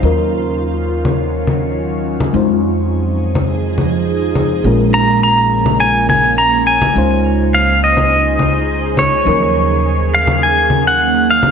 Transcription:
<<
  \new Staff \with { instrumentName = "Pedal steel guitar" } { \time 4/4 \key ees \dorian \tempo 4 = 104 r1 | r1 | r8 bes''8 bes''4 aes''8 aes''8 bes''8 aes''8~ | aes''8 r8 f''8 ees''2 des''8~ |
des''4. f''8 aes''8. ges''8. f''8 | }
  \new Staff \with { instrumentName = "FM electric piano" } { \time 4/4 \key ees \dorian <ges des' ees' f' bes'>1 | <aes c' ees' f' c''>1 | <aes bes des' f' bes'>1 | <aes des' ees' f' c''>1 |
<f ges des' ees' bes'>1 | }
  \new Staff \with { instrumentName = "Ambient pad" } { \time 4/4 \key ees \dorian <ees ges des' f'>1 | <f ees' aes'>1 | <aes bes des'>1 | <des ees' aes' c''>1 |
<ees bes des'>1 | }
  \new Staff \with { instrumentName = "Upright bass" } { \clef bass \time 4/4 \key ees \dorian ees,1 | f,1 | bes,,1 | des,1 |
ees,1 | }
  \new DrumStaff \with { instrumentName = "Drums" } \drummode { \time 4/4 r4 r8. cgl16 r8 cgl8 r8. cgl16 | r4 r8. cgl16 r8 cgl8 r8 cgl8 | r4 r8. cgl16 r8 cgl8 r8. cgl16 | r4 r8. cgl16 r8 cgl8 r8 cgl8 |
r4 r8. cgl16 r8 cgl8 r8. cgl16 | }
>>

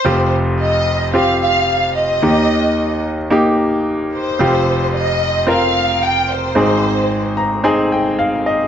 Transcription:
<<
  \new Staff \with { instrumentName = "Violin section" } { \time 4/4 \key f \minor \tempo 4 = 111 c''8 r8 ees''4 f''8 f''4 ees''8~ | ees''4. r2 c''8~ | c''4 ees''4 f''4 g''8 c''8~ | c''4. r2 r8 | }
  \new Staff \with { instrumentName = "Grand piano" } { \time 4/4 \key f \minor << { r1 | r1 | r1 | r4. bes''8 aes''8 g''8 f''8 ees''8 | } \\ { <c' f' g'>4. r8 <c' f' g'>4. r8 | <bes ees' g'>4. r8 <bes ees' g'>4. r8 | <c' f' g'>4. r8 <c' f' bes'>4. r8 | <c' ees' aes'>4. r8 <c' ees' aes'>4. r8 | } >> }
  \new Staff \with { instrumentName = "Grand piano" } { \clef bass \time 4/4 \key f \minor <f,, f,>1 | <ees, ees>1 | <f,, f,>1 | <aes,, aes,>1 | }
>>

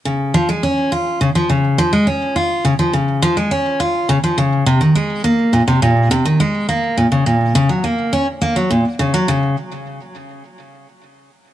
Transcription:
\new Staff \with { instrumentName = "Steel-string acoustic guitar" } { \clef bass \time 4/4 \key des \major \tempo 4 = 104 des8 f16 aes16 des'8 f'8 des16 f16 des8 f16 aes16 des'8 | f'8 des16 f16 des8 f16 aes16 des'8 f'8 des16 f16 des8 | c16 ees16 aes8 bes8 bes,16 c16 bes,8 c16 ees16 aes8 bes8 | bes,16 des16 bes,8 des16 ges16 bes8 des'16 r16 bes16 ges16 bes,16 r16 des16 ges16 |
des8 r2. r8 | }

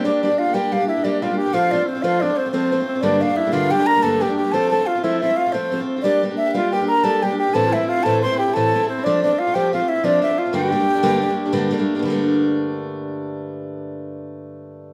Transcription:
<<
  \new Staff \with { instrumentName = "Flute" } { \time 9/8 \key g \dorian \tempo 4. = 120 d''8 d''8 f''8 g''8 f''8 e''8 d''8 f''8 g''8 | f''8 d''8 c''8 f''8 d''8 c''8 c''4. | d''8 f''8 e''8 f''8 g''8 bes''8 a''8 g''8 g''8 | a''8 a''8 f''8 e''8 e''8 f''8 c''4. |
d''8 r8 e''16. e''32 f''8 g''8 bes''8 a''8 g''8 g''8 | a''8 e''8 f''8 a''8 c'''8 g''8 a''4 c''8 | d''8 d''8 f''8 g''8 f''8 e''8 d''8 e''8 f''8 | g''2.~ g''8 r4 |
r1 r8 | r1 r8 | }
  \new Staff \with { instrumentName = "Alto saxophone" } { \time 9/8 \key g \dorian d'8 d'8 f'8 g'4 e'8 d'8 f'8 g'8 | f'4 c'8 f'8 d'8 c'8 c'4 c'8 | d'4 e'8 f'8 g'8 bes'8 a'8 g'8 g'8 | a'8 a'8 f'8 e'8 e'8 f'8 c'4. |
d'8 r4 f'8 g'8 bes'8 a'8 g'8 g'8 | a'16. f'32 e'8 f'8 a'8 c''8 g'8 a'4 c'8 | d'8 d'8 f'8 g'8 f'8 e'8 d'4 f'8 | g'2.~ g'8 r4 |
r1 r8 | r1 r8 | }
  \new Staff \with { instrumentName = "Steel-string acoustic guitar" } { \time 9/8 \key g \dorian <g bes d' g'>8 <g bes d' g'>16 <bes d' g'>8 <bes d' g'>16 <g bes d' g'>8 <g bes d' g'>16 <bes d' g'>8 <bes d' g'>16 <g bes d' g'>8 <g bes d' g'>16 <bes d' g'>8 <bes d' g'>16 | <f a c' f'>8 <f a c' f'>16 <a c' f'>8 <a c' f'>16 <f a c' f'>8 <f a c' f'>16 <a c' f'>8 <a c' f'>16 <f a c' f'>8 <f a c' f'>16 <a c' f'>8 <a c' f'>16 | <g, d g a bes d'>8 <g a bes d'>16 <g a bes d'>8 <g a bes d'>16 <g, d g a bes d'>8 <g a bes d'>16 <g a bes d'>8 <g a bes d'>16 <g, d g a bes d'>8 <g a bes d'>16 <g a bes d'>8 <g a bes d'>16 | <f a c' f'>8 <f a c' f'>16 <a c' f'>8 <a c' f'>16 <f a c' f'>8 <f a c' f'>16 <a c' f'>8 <a c' f'>16 <f a c' f'>8 <f a c' f'>16 <a c' f'>8 <a c' f'>16 |
<g bes d' g'>8 <g bes d' g'>16 <bes d' g'>8 <bes d' g'>16 <g bes d' g'>8 <g bes d' g'>16 <bes d' g'>8 <bes d' g'>16 <g bes d' g'>8 <g bes d' g'>16 <bes d' g'>8 <bes d' g'>16 | <a, e a c' e'>8 <e a c' e'>16 <a c' e'>8 <a c' e'>16 <a, e a c' e'>8 <e a c' e'>16 <a c' e'>8 <a c' e'>16 <a, e a c' e'>8 <e a c' e'>16 <a c' e'>8 <a c' e'>16 | <f a c' f'>8 <f a c' f'>16 <a c' f'>8 <a c' f'>16 <f a c' f'>8 <f a c' f'>16 <a c' f'>8 <a c' f'>16 <f a c' f'>8 <f a c' f'>16 <a c' f'>8 <a c' f'>16 | <g, d g a bes d'>8 <g a bes d'>16 <g a bes d'>8 <g a bes d'>16 <g, d g a bes d'>8 <g a bes d'>16 <g a bes d'>8 <g a bes d'>16 <g, d g a bes d'>8 <g a bes d'>16 <g a bes d'>8 <g a bes d'>16 |
<g, d g a bes d'>1~ <g, d g a bes d'>8~ | <g, d g a bes d'>1~ <g, d g a bes d'>8 | }
>>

